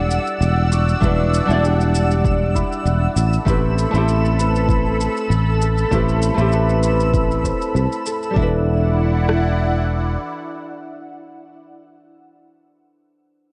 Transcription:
Already playing: E1 G3 D4 E4 G4 A4 D5 F#5 E6
0.11 shaker
0.27 shaker
0.40 E1, shaker
0.71 F#4, shaker
0.89 shaker
1.00 E1 G3 D4 E4 F#4 B4, kick, shaker
1.34 shaker
1.45 E1 G3 D4 E4
1.50 D5 F#5, shaker
1.63 G4, shaker
1.81 shaker
1.95 shaker
2.11 shaker
2.24 D4, kick, shaker
2.55 E4, kick, shaker
2.72 shaker
2.85 E1, shaker
3.16 A1 A4 B5, shaker
3.33 shaker
3.45 A1 A3 C4 E4 G4 B4, kick, shaker
3.78 shaker
3.91 A1 A3 C4 E4, shaker
3.96 G4
4.08 shaker
4.25 shaker
4.38 B4, shaker
4.56 shaker
4.69 E4, kick, shaker
5.01 shaker
5.17 shaker
5.30 A1, shaker
5.61 A4, shaker
5.78 shaker
5.90 A1 A3 C4 E4 G4 B4, kick, shaker
6.09 shaker
6.22 shaker
6.34 A1 A3 C4 E4, shaker
6.40 G4
6.52 B4, shaker
6.70 shaker
6.83 shaker
7.00 shaker
7.14 E4, kick, shaker
7.31 shaker
7.44 C5, kick, shaker
7.62 shaker
7.75 C2, shaker
7.92 shaker
8.06 A4, shaker
8.23 shaker
8.30 G3 D4
8.36 E1 D4 E4 F#4 D5 F#5, kick
8.42 B4
9.29 cross-stick

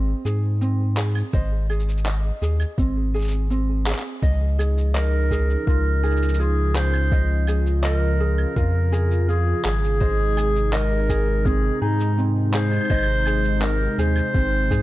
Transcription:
Already playing: G#1 C4 G#4 D#5
0.25 G#2 G#4, shaker
0.61 C4, shaker
0.97 G#4, clap, shaker
1.15 claves, shaker
1.33 G#1 C5 D#5, kick, shaker
1.69 G#4, claves, shaker
1.80 shaker
1.89 shaker
1.98 shaker
2.06 D#5, clap, shaker
2.42 D#2 G#4, shaker
2.60 claves, shaker
2.78 G#1 C4, kick, shaker
3.14 G#4, shaker
3.18 shaker
3.21 shaker
3.24 shaker
3.27 shaker
3.30 shaker
3.33 shaker
3.50 C4, shaker
3.86 G#4, clap
3.92 clap
3.99 clap
4.06 shaker
4.22 C#2 C#3 F3 D#4 D#5, kick, shaker
4.59 G#4, claves, shaker
4.78 shaker
4.94 A#4 D#5, clap, shaker
5.31 G#4, kick, shaker
5.50 shaker
5.67 C#2 F4 A#4, kick, shaker
6.03 G#4, shaker
6.10 shaker
6.16 shaker
6.22 shaker
6.28 shaker
6.34 shaker
6.39 F4 G#4, shaker
6.75 G#4 C5, clap, shaker
6.94 claves, shaker
7.12 F4 D#5, kick, shaker
7.47 G#4, claves, shaker
7.66 shaker
7.84 A#4 D#5, clap, shaker
8.20 G#4
8.38 claves
8.56 F2 F4 A#4, kick, shaker
8.92 G#4, shaker
9.11 shaker
9.29 F4 G#4, shaker
9.64 G#1 G#4, clap, shaker
9.84 shaker
10.00 C3 G#3 D#4 C5 D#5, kick, shaker
10.37 G#4, claves, shaker
10.56 shaker
10.73 A#4 D#5, clap, shaker
11.09 G#4, kick, shaker
11.45 C4 G#4, kick, shaker
11.81 G#2 D#4 G#4
12.00 shaker
12.18 C4, shaker
12.54 G#4 C5, clap, shaker
12.72 claves, shaker
12.76 claves
12.81 claves
12.85 claves
12.90 G#1 C5 D#5, kick, claves, shaker
12.94 claves
12.98 claves
13.03 claves
13.25 G#4, claves, shaker
13.44 shaker
13.62 A#4 D#5, clap, shaker
13.98 D#2 G#4 C5, shaker
14.16 claves, shaker
14.34 G#1 C4, kick, shaker
14.71 G#2 G#4, kick, shaker

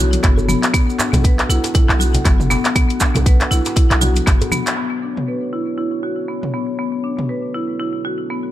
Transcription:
Already playing: B1 B3 D4 F#4 A4 C#5
0.13 closed hi-hat, high conga, maracas
0.23 F#1 B3, kick, clap, closed hi-hat, djembe tone, maracas
0.38 djembe bass, maracas
0.48 B3, mid tom, high conga, maracas
0.63 clap, closed hi-hat, maracas
0.74 B1 B3 F#5, kick, closed hi-hat, maracas
0.90 maracas
0.99 D4, clap, djembe slap, djembe tone, maracas
1.13 B1, closed hi-hat, mid tom, high conga, low conga, djembe bass, maracas
1.24 B4, kick, closed hi-hat, maracas
1.39 clap, closed hi-hat, djembe slap, maracas
1.49 B1 E4, maracas
1.64 closed hi-hat, djembe slap, maracas
1.74 E4, kick, closed hi-hat, djembe tone, djembe bass, low conga, maracas
1.89 B1, clap, maracas
1.99 F#4, high conga, maracas
2.14 closed hi-hat, low conga, maracas
2.25 F#1 B3, kick, clap, closed hi-hat, djembe tone, high conga, maracas
2.40 mid tom, maracas
2.50 B3, djembe slap, djembe tone, low conga, maracas
2.65 clap, closed hi-hat, maracas
2.76 B1 B3, kick, closed hi-hat, maracas
2.90 closed hi-hat, maracas
3.00 D4, kick, clap, djembe slap, djembe tone, maracas
3.15 B1, closed hi-hat, mid tom, low conga, djembe bass, maracas
3.26 B4, kick, closed hi-hat, maracas
3.40 clap, closed hi-hat, djembe slap, maracas
3.51 B1 E4, maracas
3.65 closed hi-hat, djembe slap, maracas
3.76 E4, kick, closed hi-hat, maracas
3.91 B1, clap, closed hi-hat, djembe slap, maracas
4.01 F#4, high conga, low conga, maracas
4.16 closed hi-hat, high conga, maracas
4.26 F#1 B3, kick, clap, closed hi-hat, djembe tone, maracas
4.41 closed hi-hat, djembe tone, djembe bass, maracas
4.52 B3, mid tom, high conga, maracas
4.66 clap, closed hi-hat, maracas
4.77 B3 D4 F#4 A4 C#5
5.02 D4
5.17 mid tom
5.28 B4
5.53 E4
5.78 E4
6.03 F#4
6.28 B3
6.43 mid tom
6.54 B3
6.79 B3
7.04 D4
7.19 mid tom
7.29 B4
7.54 E4
7.80 E4
8.05 F#4
8.30 B3

